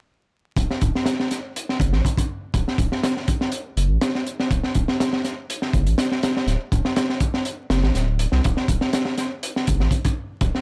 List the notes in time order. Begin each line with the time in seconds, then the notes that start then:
0.56 D1, kick, closed hi-hat
0.71 snare
0.81 D1, kick, closed hi-hat
0.95 snare
1.06 snare, closed hi-hat
1.20 snare
1.31 snare, closed hi-hat
1.56 closed hi-hat
1.69 snare
1.80 F#1, kick, closed hi-hat
1.93 A1, snare
2.05 kick, closed hi-hat
2.18 kick, closed hi-hat
2.54 D1, kick, closed hi-hat
2.68 snare
2.78 D1, kick, closed hi-hat
2.92 snare
3.03 snare, closed hi-hat
3.17 snare
3.28 kick, closed hi-hat
3.41 snare
3.52 closed hi-hat
3.77 F#1, closed hi-hat
3.90 A1
4.01 snare, closed hi-hat
4.15 snare
4.27 closed hi-hat
4.40 snare
4.50 D1, kick, closed hi-hat
4.63 snare
4.75 D1, kick, closed hi-hat
4.88 snare
5.00 snare, closed hi-hat
5.13 snare
5.24 snare, closed hi-hat
5.50 closed hi-hat
5.62 snare
5.73 F#1, kick, closed hi-hat
5.86 A1, closed hi-hat
5.98 snare, closed hi-hat
6.12 snare
6.23 snare, closed hi-hat
6.37 snare
6.47 D1, snare, closed hi-hat
6.72 D1, kick, closed hi-hat
6.85 snare
6.96 snare, closed hi-hat
7.09 snare
7.20 kick, closed hi-hat
7.34 snare
7.45 closed hi-hat
7.70 F#1, snare, closed hi-hat
7.83 A1, snare
7.95 D1, snare, closed hi-hat
8.19 closed hi-hat
8.32 C2, snare
8.44 D1, kick, closed hi-hat
8.57 snare
8.68 D1, kick, closed hi-hat
8.81 snare
8.93 snare, closed hi-hat
9.05 snare
9.18 snare, closed hi-hat
9.43 closed hi-hat
9.56 snare
9.67 F#1, kick, closed hi-hat
9.80 A1, snare
9.91 kick, closed hi-hat
10.05 kick, closed hi-hat
10.41 D1, kick, closed hi-hat
10.55 snare